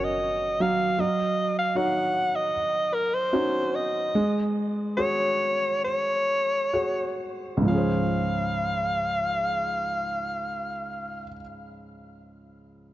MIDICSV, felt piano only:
0, 0, Header, 1, 2, 480
1, 0, Start_track
1, 0, Key_signature, -5, "major"
1, 0, Tempo, 778210
1, 611, Time_signature, 4, 2, 24, 8
1, 2058, Tempo, 823045
1, 3018, Tempo, 863309
1, 3498, Tempo, 916031
1, 4458, Tempo, 958466
1, 7091, End_track
2, 0, Start_track
2, 0, Title_t, "Felt piano"
2, 0, Program_c, 0, 0
2, 0, Control_c, 0, 64, 127
2, 0, Note_on_c, 0, 54, 80
2, 0, Note_on_c, 0, 61, 55
2, 0, Note_on_c, 0, 66, 49
2, 0, Note_on_c, 0, 70, 54
2, 349, Note_off_c, 0, 54, 0
2, 357, Note_off_c, 0, 61, 0
2, 359, Note_off_c, 0, 66, 0
2, 360, Note_off_c, 0, 70, 0
2, 371, Note_on_c, 0, 54, 75
2, 598, Note_off_c, 0, 54, 0
2, 608, Note_on_c, 0, 54, 64
2, 619, Control_c, 0, 64, 0
2, 721, Control_c, 0, 64, 127
2, 1081, Note_on_c, 0, 63, 47
2, 1085, Note_on_c, 0, 66, 48
2, 1086, Note_on_c, 0, 73, 63
2, 1551, Note_off_c, 0, 63, 0
2, 1553, Note_off_c, 0, 66, 0
2, 1554, Note_off_c, 0, 73, 0
2, 2052, Note_on_c, 0, 63, 50
2, 2054, Note_on_c, 0, 66, 52
2, 2057, Note_on_c, 0, 61, 53
2, 2507, Note_off_c, 0, 54, 0
2, 2515, Note_off_c, 0, 63, 0
2, 2516, Note_off_c, 0, 66, 0
2, 2517, Note_off_c, 0, 61, 0
2, 2533, Note_on_c, 0, 56, 71
2, 2540, Control_c, 0, 64, 0
2, 2651, Control_c, 0, 64, 127
2, 3013, Note_on_c, 0, 66, 52
2, 3017, Note_on_c, 0, 68, 51
2, 3019, Note_on_c, 0, 73, 56
2, 3481, Note_off_c, 0, 66, 0
2, 3483, Note_off_c, 0, 68, 0
2, 3485, Note_off_c, 0, 73, 0
2, 3963, Note_on_c, 0, 66, 50
2, 3964, Note_on_c, 0, 68, 44
2, 3966, Note_on_c, 0, 73, 55
2, 4402, Note_on_c, 0, 37, 53
2, 4423, Note_on_c, 0, 44, 54
2, 4438, Note_off_c, 0, 56, 0
2, 4441, Note_off_c, 0, 66, 0
2, 4442, Note_off_c, 0, 68, 0
2, 4443, Note_off_c, 0, 73, 0
2, 4444, Note_on_c, 0, 53, 58
2, 4464, Control_c, 0, 64, 0
2, 4465, Note_on_c, 0, 61, 48
2, 4487, Note_on_c, 0, 68, 51
2, 4508, Note_on_c, 0, 72, 58
2, 4557, Control_c, 0, 64, 127
2, 6232, Note_off_c, 0, 37, 0
2, 6253, Note_off_c, 0, 44, 0
2, 6272, Note_off_c, 0, 53, 0
2, 6293, Note_off_c, 0, 61, 0
2, 6315, Note_off_c, 0, 68, 0
2, 6336, Note_off_c, 0, 72, 0
2, 7091, End_track
0, 0, End_of_file